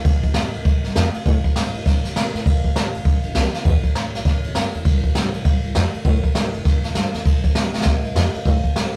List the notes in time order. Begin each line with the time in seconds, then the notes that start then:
0.05 A#1, kick, ride
0.23 D2, kick, ride
0.34 F2, snare, ride
0.53 D2, ride
0.65 C2, kick, ride
0.84 C2, snare, ride
0.95 F2, snare, ride
1.14 muted upright bass stroke, ride
1.26 A2, kick, ride
1.44 muted upright bass stroke, kick, ride
1.56 G2, snare, ride
1.74 E2, ride
1.86 G2, kick, snare, ride
2.04 A2, snare, ride
2.16 C3, snare, ride
2.34 A2, snare, ride
2.46 F2, kick, ride
2.64 A2, kick, ride
2.75 C3, snare, ride
2.94 F#1, ride
3.05 G1, kick, ride
3.23 G1, ride
3.35 C2, snare, ride
3.54 muted upright bass stroke, snare, ride
3.65 E2, kick, ride
3.84 muted upright bass stroke, kick, ride
3.95 D2, snare, ride
4.14 B1, snare, ride
4.25 D2, kick, snare, ride
4.44 E2, ride
4.55 G2, snare, ride
4.74 E2, ride
4.85 C2, kick, ride
5.04 E2, kick, ride
5.15 G2, snare, ride
5.34 B1, ride
5.45 C2, kick, ride
5.63 C2, ride
5.75 F2, snare, ride
5.94 muted upright bass stroke, ride
6.05 A2, kick, ride
6.24 muted upright bass stroke, kick, ride
6.35 G2, snare, ride
6.53 F1, ride
6.65 G1, kick, snare, ride
6.84 E2, snare, ride
6.95 G2, snare, ride
7.13 E2, snare, ride
7.26 C2, kick, ride
7.44 E2, kick, ride
7.55 G2, snare, ride
7.74 B1, snare
7.81 snare
7.86 C2, kick, snare, ride
8.04 C2, ride
8.15 F2, snare, ride
8.34 muted upright bass stroke, ride
8.46 A2, kick, ride
8.64 muted upright bass stroke, kick, ride
8.76 G2, snare, ride